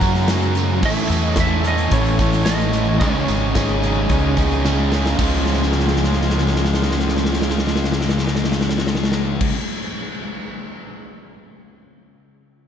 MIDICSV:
0, 0, Header, 1, 8, 480
1, 0, Start_track
1, 0, Key_signature, -5, "major"
1, 0, Tempo, 544959
1, 729, Time_signature, 4, 2, 24, 8
1, 11167, End_track
2, 0, Start_track
2, 0, Title_t, "Clean electric guitar"
2, 0, Program_c, 0, 27
2, 0, Note_on_c, 0, 82, 94
2, 455, Note_off_c, 0, 82, 0
2, 753, Note_on_c, 0, 76, 113
2, 1105, Note_off_c, 0, 76, 0
2, 1105, Note_on_c, 0, 75, 113
2, 1225, Note_off_c, 0, 75, 0
2, 1236, Note_on_c, 0, 76, 111
2, 1469, Note_off_c, 0, 76, 0
2, 1474, Note_on_c, 0, 75, 99
2, 1694, Note_off_c, 0, 75, 0
2, 1697, Note_on_c, 0, 73, 95
2, 2153, Note_off_c, 0, 73, 0
2, 2156, Note_on_c, 0, 75, 97
2, 2634, Note_off_c, 0, 75, 0
2, 2638, Note_on_c, 0, 73, 89
2, 4049, Note_off_c, 0, 73, 0
2, 11167, End_track
3, 0, Start_track
3, 0, Title_t, "Woodwind section"
3, 0, Program_c, 1, 71
3, 0, Note_on_c, 1, 66, 78
3, 0, Note_on_c, 1, 78, 70
3, 0, Note_on_c, 1, 82, 83
3, 719, Note_off_c, 1, 66, 0
3, 721, Note_off_c, 1, 78, 0
3, 725, Note_off_c, 1, 82, 0
3, 734, Note_on_c, 1, 85, 83
3, 736, Note_on_c, 1, 69, 78
3, 742, Note_on_c, 1, 80, 73
3, 2634, Note_off_c, 1, 69, 0
3, 2637, Note_off_c, 1, 80, 0
3, 2665, Note_on_c, 1, 75, 74
3, 2675, Note_on_c, 1, 68, 82
3, 4433, Note_off_c, 1, 68, 0
3, 4433, Note_off_c, 1, 75, 0
3, 4433, Note_off_c, 1, 85, 0
3, 4583, Note_on_c, 1, 49, 77
3, 4589, Note_on_c, 1, 65, 83
3, 4591, Note_on_c, 1, 56, 70
3, 8357, Note_off_c, 1, 49, 0
3, 8360, Note_off_c, 1, 65, 0
3, 8362, Note_off_c, 1, 56, 0
3, 11167, End_track
4, 0, Start_track
4, 0, Title_t, "Overdriven electric guitar"
4, 0, Program_c, 2, 29
4, 14, Note_on_c, 2, 70, 78
4, 25, Note_on_c, 2, 66, 66
4, 256, Note_off_c, 2, 66, 0
4, 257, Note_off_c, 2, 70, 0
4, 267, Note_on_c, 2, 66, 80
4, 268, Note_on_c, 2, 70, 74
4, 723, Note_off_c, 2, 66, 0
4, 724, Note_off_c, 2, 70, 0
4, 751, Note_on_c, 2, 69, 104
4, 970, Note_off_c, 2, 69, 0
4, 981, Note_on_c, 2, 69, 75
4, 1215, Note_off_c, 2, 69, 0
4, 1225, Note_on_c, 2, 69, 75
4, 1440, Note_off_c, 2, 69, 0
4, 1451, Note_on_c, 2, 69, 74
4, 1918, Note_off_c, 2, 69, 0
4, 1929, Note_on_c, 2, 69, 72
4, 2172, Note_off_c, 2, 69, 0
4, 2183, Note_on_c, 2, 69, 81
4, 2642, Note_off_c, 2, 69, 0
4, 2660, Note_on_c, 2, 68, 99
4, 2884, Note_off_c, 2, 68, 0
4, 2895, Note_on_c, 2, 68, 72
4, 3132, Note_off_c, 2, 68, 0
4, 3142, Note_on_c, 2, 68, 78
4, 3355, Note_off_c, 2, 68, 0
4, 3366, Note_on_c, 2, 68, 75
4, 3835, Note_off_c, 2, 68, 0
4, 3846, Note_on_c, 2, 68, 74
4, 4094, Note_off_c, 2, 68, 0
4, 4104, Note_on_c, 2, 68, 76
4, 4563, Note_off_c, 2, 68, 0
4, 4597, Note_on_c, 2, 65, 110
4, 8400, Note_off_c, 2, 65, 0
4, 11167, End_track
5, 0, Start_track
5, 0, Title_t, "Distorted electric guitar"
5, 0, Program_c, 3, 30
5, 0, Note_on_c, 3, 61, 85
5, 753, Note_off_c, 3, 61, 0
5, 11167, End_track
6, 0, Start_track
6, 0, Title_t, "Overdriven electric guitar"
6, 0, Program_c, 4, 29
6, 8, Note_on_c, 4, 42, 86
6, 15, Note_on_c, 4, 49, 91
6, 18, Note_on_c, 4, 54, 92
6, 22, Note_on_c, 4, 58, 91
6, 25, Note_on_c, 4, 61, 97
6, 240, Note_off_c, 4, 42, 0
6, 242, Note_off_c, 4, 49, 0
6, 251, Note_on_c, 4, 42, 81
6, 252, Note_on_c, 4, 49, 93
6, 253, Note_off_c, 4, 58, 0
6, 254, Note_off_c, 4, 54, 0
6, 263, Note_on_c, 4, 58, 90
6, 264, Note_off_c, 4, 61, 0
6, 264, Note_on_c, 4, 54, 91
6, 267, Note_on_c, 4, 61, 91
6, 483, Note_off_c, 4, 42, 0
6, 486, Note_off_c, 4, 49, 0
6, 491, Note_off_c, 4, 54, 0
6, 493, Note_off_c, 4, 58, 0
6, 494, Note_on_c, 4, 42, 82
6, 496, Note_on_c, 4, 49, 90
6, 502, Note_on_c, 4, 54, 97
6, 504, Note_on_c, 4, 58, 99
6, 505, Note_off_c, 4, 61, 0
6, 508, Note_on_c, 4, 61, 101
6, 717, Note_off_c, 4, 42, 0
6, 718, Note_off_c, 4, 49, 0
6, 721, Note_off_c, 4, 54, 0
6, 722, Note_off_c, 4, 58, 0
6, 723, Note_on_c, 4, 45, 99
6, 727, Note_on_c, 4, 52, 92
6, 733, Note_on_c, 4, 57, 94
6, 735, Note_off_c, 4, 61, 0
6, 737, Note_on_c, 4, 61, 100
6, 738, Note_on_c, 4, 64, 106
6, 954, Note_off_c, 4, 45, 0
6, 963, Note_off_c, 4, 52, 0
6, 964, Note_off_c, 4, 57, 0
6, 965, Note_on_c, 4, 45, 88
6, 972, Note_off_c, 4, 64, 0
6, 973, Note_off_c, 4, 61, 0
6, 973, Note_on_c, 4, 52, 88
6, 975, Note_on_c, 4, 57, 94
6, 977, Note_on_c, 4, 61, 97
6, 983, Note_on_c, 4, 64, 104
6, 1201, Note_off_c, 4, 45, 0
6, 1204, Note_off_c, 4, 52, 0
6, 1208, Note_off_c, 4, 57, 0
6, 1212, Note_on_c, 4, 45, 81
6, 1214, Note_on_c, 4, 52, 91
6, 1215, Note_off_c, 4, 64, 0
6, 1218, Note_on_c, 4, 57, 94
6, 1221, Note_off_c, 4, 61, 0
6, 1225, Note_on_c, 4, 61, 89
6, 1225, Note_on_c, 4, 64, 101
6, 1433, Note_off_c, 4, 45, 0
6, 1440, Note_off_c, 4, 52, 0
6, 1444, Note_on_c, 4, 45, 96
6, 1446, Note_off_c, 4, 57, 0
6, 1451, Note_off_c, 4, 64, 0
6, 1451, Note_on_c, 4, 52, 90
6, 1456, Note_off_c, 4, 61, 0
6, 1456, Note_on_c, 4, 57, 98
6, 1459, Note_on_c, 4, 61, 102
6, 1462, Note_on_c, 4, 64, 101
6, 1676, Note_off_c, 4, 45, 0
6, 1685, Note_off_c, 4, 52, 0
6, 1687, Note_off_c, 4, 57, 0
6, 1687, Note_on_c, 4, 45, 93
6, 1693, Note_off_c, 4, 64, 0
6, 1695, Note_off_c, 4, 61, 0
6, 1695, Note_on_c, 4, 52, 87
6, 1698, Note_on_c, 4, 57, 101
6, 1698, Note_on_c, 4, 61, 96
6, 1704, Note_on_c, 4, 64, 100
6, 1915, Note_off_c, 4, 45, 0
6, 1916, Note_off_c, 4, 52, 0
6, 1925, Note_off_c, 4, 57, 0
6, 1926, Note_on_c, 4, 45, 81
6, 1926, Note_on_c, 4, 52, 97
6, 1929, Note_off_c, 4, 64, 0
6, 1935, Note_off_c, 4, 61, 0
6, 1935, Note_on_c, 4, 57, 93
6, 1938, Note_on_c, 4, 61, 93
6, 1939, Note_on_c, 4, 64, 90
6, 2153, Note_off_c, 4, 45, 0
6, 2160, Note_off_c, 4, 52, 0
6, 2163, Note_off_c, 4, 57, 0
6, 2164, Note_on_c, 4, 45, 91
6, 2165, Note_off_c, 4, 64, 0
6, 2168, Note_off_c, 4, 61, 0
6, 2170, Note_on_c, 4, 52, 97
6, 2172, Note_on_c, 4, 61, 95
6, 2173, Note_on_c, 4, 57, 92
6, 2176, Note_on_c, 4, 64, 96
6, 2393, Note_off_c, 4, 45, 0
6, 2398, Note_off_c, 4, 52, 0
6, 2404, Note_on_c, 4, 45, 97
6, 2406, Note_off_c, 4, 57, 0
6, 2407, Note_off_c, 4, 64, 0
6, 2408, Note_on_c, 4, 52, 96
6, 2416, Note_off_c, 4, 61, 0
6, 2416, Note_on_c, 4, 57, 93
6, 2417, Note_on_c, 4, 64, 91
6, 2419, Note_on_c, 4, 61, 85
6, 2632, Note_off_c, 4, 45, 0
6, 2634, Note_off_c, 4, 52, 0
6, 2639, Note_off_c, 4, 57, 0
6, 2639, Note_off_c, 4, 64, 0
6, 2650, Note_on_c, 4, 49, 93
6, 2652, Note_off_c, 4, 61, 0
6, 2654, Note_on_c, 4, 56, 97
6, 2656, Note_on_c, 4, 61, 100
6, 2657, Note_on_c, 4, 63, 103
6, 2883, Note_off_c, 4, 49, 0
6, 2886, Note_off_c, 4, 56, 0
6, 2890, Note_off_c, 4, 61, 0
6, 2894, Note_on_c, 4, 49, 85
6, 2895, Note_off_c, 4, 63, 0
6, 2897, Note_on_c, 4, 56, 88
6, 2901, Note_on_c, 4, 61, 88
6, 2906, Note_on_c, 4, 63, 94
6, 3119, Note_off_c, 4, 49, 0
6, 3123, Note_off_c, 4, 56, 0
6, 3125, Note_off_c, 4, 61, 0
6, 3129, Note_on_c, 4, 49, 82
6, 3132, Note_off_c, 4, 63, 0
6, 3134, Note_on_c, 4, 56, 83
6, 3135, Note_on_c, 4, 61, 90
6, 3143, Note_on_c, 4, 63, 97
6, 3358, Note_off_c, 4, 49, 0
6, 3364, Note_off_c, 4, 56, 0
6, 3368, Note_off_c, 4, 61, 0
6, 3368, Note_on_c, 4, 49, 87
6, 3375, Note_off_c, 4, 63, 0
6, 3375, Note_on_c, 4, 56, 91
6, 3379, Note_on_c, 4, 61, 93
6, 3386, Note_on_c, 4, 63, 102
6, 3601, Note_off_c, 4, 49, 0
6, 3607, Note_off_c, 4, 61, 0
6, 3608, Note_off_c, 4, 56, 0
6, 3611, Note_on_c, 4, 49, 82
6, 3612, Note_off_c, 4, 63, 0
6, 3617, Note_on_c, 4, 61, 102
6, 3618, Note_on_c, 4, 56, 86
6, 3623, Note_on_c, 4, 63, 102
6, 3838, Note_off_c, 4, 49, 0
6, 3846, Note_off_c, 4, 56, 0
6, 3846, Note_off_c, 4, 61, 0
6, 3848, Note_off_c, 4, 63, 0
6, 3849, Note_on_c, 4, 49, 81
6, 3856, Note_on_c, 4, 61, 95
6, 3857, Note_on_c, 4, 56, 87
6, 3859, Note_on_c, 4, 63, 92
6, 4082, Note_off_c, 4, 49, 0
6, 4089, Note_off_c, 4, 56, 0
6, 4092, Note_off_c, 4, 61, 0
6, 4093, Note_on_c, 4, 49, 89
6, 4095, Note_off_c, 4, 63, 0
6, 4100, Note_on_c, 4, 56, 93
6, 4103, Note_on_c, 4, 61, 89
6, 4105, Note_on_c, 4, 63, 90
6, 4317, Note_off_c, 4, 49, 0
6, 4326, Note_off_c, 4, 56, 0
6, 4327, Note_off_c, 4, 61, 0
6, 4328, Note_on_c, 4, 49, 91
6, 4331, Note_off_c, 4, 63, 0
6, 4337, Note_on_c, 4, 56, 86
6, 4338, Note_on_c, 4, 61, 89
6, 4341, Note_on_c, 4, 63, 95
6, 4555, Note_off_c, 4, 49, 0
6, 4559, Note_off_c, 4, 56, 0
6, 4559, Note_off_c, 4, 61, 0
6, 4561, Note_off_c, 4, 63, 0
6, 4570, Note_on_c, 4, 49, 85
6, 4581, Note_on_c, 4, 53, 92
6, 4594, Note_on_c, 4, 56, 90
6, 4604, Note_on_c, 4, 61, 95
6, 8386, Note_off_c, 4, 49, 0
6, 8392, Note_off_c, 4, 53, 0
6, 8398, Note_off_c, 4, 56, 0
6, 8403, Note_off_c, 4, 61, 0
6, 11167, End_track
7, 0, Start_track
7, 0, Title_t, "Fingered electric bass"
7, 0, Program_c, 5, 33
7, 0, Note_on_c, 5, 42, 102
7, 735, Note_off_c, 5, 42, 0
7, 735, Note_on_c, 5, 33, 102
7, 959, Note_off_c, 5, 33, 0
7, 968, Note_on_c, 5, 40, 90
7, 1653, Note_off_c, 5, 40, 0
7, 1688, Note_on_c, 5, 33, 111
7, 2654, Note_off_c, 5, 33, 0
7, 2654, Note_on_c, 5, 37, 102
7, 2879, Note_off_c, 5, 37, 0
7, 2896, Note_on_c, 5, 32, 93
7, 3577, Note_off_c, 5, 32, 0
7, 3614, Note_on_c, 5, 37, 106
7, 4537, Note_off_c, 5, 37, 0
7, 4574, Note_on_c, 5, 37, 95
7, 8353, Note_off_c, 5, 37, 0
7, 11167, End_track
8, 0, Start_track
8, 0, Title_t, "Drums"
8, 10, Note_on_c, 9, 42, 72
8, 12, Note_on_c, 9, 36, 78
8, 22, Note_on_c, 9, 54, 65
8, 98, Note_off_c, 9, 42, 0
8, 100, Note_off_c, 9, 36, 0
8, 110, Note_off_c, 9, 54, 0
8, 132, Note_on_c, 9, 38, 38
8, 132, Note_on_c, 9, 42, 51
8, 220, Note_off_c, 9, 38, 0
8, 220, Note_off_c, 9, 42, 0
8, 247, Note_on_c, 9, 38, 123
8, 247, Note_on_c, 9, 42, 106
8, 263, Note_on_c, 9, 54, 92
8, 335, Note_off_c, 9, 38, 0
8, 335, Note_off_c, 9, 42, 0
8, 351, Note_off_c, 9, 54, 0
8, 369, Note_on_c, 9, 42, 47
8, 457, Note_off_c, 9, 42, 0
8, 484, Note_on_c, 9, 42, 79
8, 506, Note_on_c, 9, 54, 74
8, 572, Note_off_c, 9, 42, 0
8, 594, Note_off_c, 9, 54, 0
8, 730, Note_on_c, 9, 36, 114
8, 730, Note_on_c, 9, 49, 103
8, 745, Note_on_c, 9, 54, 76
8, 818, Note_off_c, 9, 36, 0
8, 818, Note_off_c, 9, 49, 0
8, 833, Note_off_c, 9, 54, 0
8, 839, Note_on_c, 9, 42, 49
8, 927, Note_off_c, 9, 42, 0
8, 963, Note_on_c, 9, 42, 76
8, 988, Note_on_c, 9, 54, 68
8, 1051, Note_off_c, 9, 42, 0
8, 1076, Note_off_c, 9, 54, 0
8, 1197, Note_on_c, 9, 38, 118
8, 1197, Note_on_c, 9, 42, 117
8, 1208, Note_on_c, 9, 36, 90
8, 1221, Note_on_c, 9, 54, 100
8, 1285, Note_off_c, 9, 38, 0
8, 1285, Note_off_c, 9, 42, 0
8, 1296, Note_off_c, 9, 36, 0
8, 1309, Note_off_c, 9, 54, 0
8, 1447, Note_on_c, 9, 42, 78
8, 1456, Note_on_c, 9, 54, 27
8, 1535, Note_off_c, 9, 42, 0
8, 1544, Note_off_c, 9, 54, 0
8, 1564, Note_on_c, 9, 42, 52
8, 1652, Note_off_c, 9, 42, 0
8, 1683, Note_on_c, 9, 42, 104
8, 1689, Note_on_c, 9, 36, 117
8, 1771, Note_off_c, 9, 42, 0
8, 1777, Note_off_c, 9, 36, 0
8, 1809, Note_on_c, 9, 42, 47
8, 1897, Note_off_c, 9, 42, 0
8, 1927, Note_on_c, 9, 42, 79
8, 1930, Note_on_c, 9, 36, 79
8, 1936, Note_on_c, 9, 54, 73
8, 2015, Note_off_c, 9, 42, 0
8, 2019, Note_off_c, 9, 36, 0
8, 2024, Note_off_c, 9, 54, 0
8, 2051, Note_on_c, 9, 38, 37
8, 2051, Note_on_c, 9, 42, 53
8, 2139, Note_off_c, 9, 38, 0
8, 2139, Note_off_c, 9, 42, 0
8, 2165, Note_on_c, 9, 38, 121
8, 2165, Note_on_c, 9, 42, 108
8, 2172, Note_on_c, 9, 54, 107
8, 2253, Note_off_c, 9, 38, 0
8, 2253, Note_off_c, 9, 42, 0
8, 2260, Note_off_c, 9, 54, 0
8, 2292, Note_on_c, 9, 42, 52
8, 2380, Note_off_c, 9, 42, 0
8, 2407, Note_on_c, 9, 42, 79
8, 2414, Note_on_c, 9, 54, 77
8, 2495, Note_off_c, 9, 42, 0
8, 2502, Note_off_c, 9, 54, 0
8, 2648, Note_on_c, 9, 42, 103
8, 2652, Note_on_c, 9, 36, 117
8, 2656, Note_on_c, 9, 54, 78
8, 2736, Note_off_c, 9, 42, 0
8, 2740, Note_off_c, 9, 36, 0
8, 2744, Note_off_c, 9, 54, 0
8, 2890, Note_on_c, 9, 42, 69
8, 2892, Note_on_c, 9, 54, 82
8, 2978, Note_off_c, 9, 42, 0
8, 2980, Note_off_c, 9, 54, 0
8, 3129, Note_on_c, 9, 38, 118
8, 3129, Note_on_c, 9, 42, 104
8, 3131, Note_on_c, 9, 36, 94
8, 3138, Note_on_c, 9, 54, 96
8, 3217, Note_off_c, 9, 38, 0
8, 3217, Note_off_c, 9, 42, 0
8, 3219, Note_off_c, 9, 36, 0
8, 3226, Note_off_c, 9, 54, 0
8, 3252, Note_on_c, 9, 42, 45
8, 3340, Note_off_c, 9, 42, 0
8, 3377, Note_on_c, 9, 42, 71
8, 3465, Note_off_c, 9, 42, 0
8, 3606, Note_on_c, 9, 42, 97
8, 3610, Note_on_c, 9, 36, 112
8, 3618, Note_on_c, 9, 54, 26
8, 3694, Note_off_c, 9, 42, 0
8, 3698, Note_off_c, 9, 36, 0
8, 3706, Note_off_c, 9, 54, 0
8, 3846, Note_on_c, 9, 42, 71
8, 3851, Note_on_c, 9, 36, 76
8, 3859, Note_on_c, 9, 54, 64
8, 3934, Note_off_c, 9, 42, 0
8, 3939, Note_off_c, 9, 36, 0
8, 3948, Note_off_c, 9, 54, 0
8, 3977, Note_on_c, 9, 42, 49
8, 4065, Note_off_c, 9, 42, 0
8, 4093, Note_on_c, 9, 38, 67
8, 4100, Note_on_c, 9, 54, 89
8, 4181, Note_off_c, 9, 38, 0
8, 4188, Note_off_c, 9, 54, 0
8, 4332, Note_on_c, 9, 38, 93
8, 4338, Note_on_c, 9, 54, 64
8, 4420, Note_off_c, 9, 38, 0
8, 4426, Note_off_c, 9, 54, 0
8, 4454, Note_on_c, 9, 38, 90
8, 4542, Note_off_c, 9, 38, 0
8, 4570, Note_on_c, 9, 36, 113
8, 4570, Note_on_c, 9, 54, 83
8, 4571, Note_on_c, 9, 57, 96
8, 4658, Note_off_c, 9, 36, 0
8, 4658, Note_off_c, 9, 54, 0
8, 4659, Note_off_c, 9, 57, 0
8, 4807, Note_on_c, 9, 38, 47
8, 4874, Note_off_c, 9, 38, 0
8, 4874, Note_on_c, 9, 38, 46
8, 4952, Note_off_c, 9, 38, 0
8, 4952, Note_on_c, 9, 38, 52
8, 5036, Note_off_c, 9, 38, 0
8, 5036, Note_on_c, 9, 38, 54
8, 5102, Note_off_c, 9, 38, 0
8, 5102, Note_on_c, 9, 38, 55
8, 5173, Note_off_c, 9, 38, 0
8, 5173, Note_on_c, 9, 38, 54
8, 5249, Note_off_c, 9, 38, 0
8, 5249, Note_on_c, 9, 38, 58
8, 5318, Note_off_c, 9, 38, 0
8, 5318, Note_on_c, 9, 38, 56
8, 5397, Note_off_c, 9, 38, 0
8, 5397, Note_on_c, 9, 38, 58
8, 5473, Note_off_c, 9, 38, 0
8, 5473, Note_on_c, 9, 38, 57
8, 5546, Note_off_c, 9, 38, 0
8, 5546, Note_on_c, 9, 38, 59
8, 5620, Note_off_c, 9, 38, 0
8, 5620, Note_on_c, 9, 38, 60
8, 5700, Note_off_c, 9, 38, 0
8, 5700, Note_on_c, 9, 38, 57
8, 5775, Note_off_c, 9, 38, 0
8, 5775, Note_on_c, 9, 38, 61
8, 5853, Note_off_c, 9, 38, 0
8, 5853, Note_on_c, 9, 38, 64
8, 5934, Note_off_c, 9, 38, 0
8, 5934, Note_on_c, 9, 38, 72
8, 6011, Note_off_c, 9, 38, 0
8, 6011, Note_on_c, 9, 38, 73
8, 6084, Note_off_c, 9, 38, 0
8, 6084, Note_on_c, 9, 38, 73
8, 6158, Note_off_c, 9, 38, 0
8, 6158, Note_on_c, 9, 38, 62
8, 6241, Note_off_c, 9, 38, 0
8, 6241, Note_on_c, 9, 38, 67
8, 6311, Note_off_c, 9, 38, 0
8, 6311, Note_on_c, 9, 38, 67
8, 6386, Note_off_c, 9, 38, 0
8, 6386, Note_on_c, 9, 38, 68
8, 6457, Note_off_c, 9, 38, 0
8, 6457, Note_on_c, 9, 38, 68
8, 6531, Note_off_c, 9, 38, 0
8, 6531, Note_on_c, 9, 38, 79
8, 6604, Note_off_c, 9, 38, 0
8, 6604, Note_on_c, 9, 38, 75
8, 6679, Note_off_c, 9, 38, 0
8, 6679, Note_on_c, 9, 38, 77
8, 6757, Note_off_c, 9, 38, 0
8, 6757, Note_on_c, 9, 38, 74
8, 6832, Note_off_c, 9, 38, 0
8, 6832, Note_on_c, 9, 38, 76
8, 6907, Note_off_c, 9, 38, 0
8, 6907, Note_on_c, 9, 38, 81
8, 6979, Note_off_c, 9, 38, 0
8, 6979, Note_on_c, 9, 38, 87
8, 7055, Note_off_c, 9, 38, 0
8, 7055, Note_on_c, 9, 38, 85
8, 7128, Note_off_c, 9, 38, 0
8, 7128, Note_on_c, 9, 38, 81
8, 7208, Note_off_c, 9, 38, 0
8, 7208, Note_on_c, 9, 38, 84
8, 7287, Note_off_c, 9, 38, 0
8, 7287, Note_on_c, 9, 38, 83
8, 7358, Note_off_c, 9, 38, 0
8, 7358, Note_on_c, 9, 38, 81
8, 7435, Note_off_c, 9, 38, 0
8, 7435, Note_on_c, 9, 38, 81
8, 7503, Note_off_c, 9, 38, 0
8, 7503, Note_on_c, 9, 38, 87
8, 7584, Note_off_c, 9, 38, 0
8, 7584, Note_on_c, 9, 38, 85
8, 7658, Note_off_c, 9, 38, 0
8, 7658, Note_on_c, 9, 38, 86
8, 7736, Note_off_c, 9, 38, 0
8, 7736, Note_on_c, 9, 38, 83
8, 7809, Note_off_c, 9, 38, 0
8, 7809, Note_on_c, 9, 38, 90
8, 7884, Note_off_c, 9, 38, 0
8, 7884, Note_on_c, 9, 38, 105
8, 7958, Note_off_c, 9, 38, 0
8, 7958, Note_on_c, 9, 38, 99
8, 8031, Note_off_c, 9, 38, 0
8, 8031, Note_on_c, 9, 38, 97
8, 8119, Note_off_c, 9, 38, 0
8, 8285, Note_on_c, 9, 57, 100
8, 8287, Note_on_c, 9, 36, 106
8, 8373, Note_off_c, 9, 57, 0
8, 8376, Note_off_c, 9, 36, 0
8, 11167, End_track
0, 0, End_of_file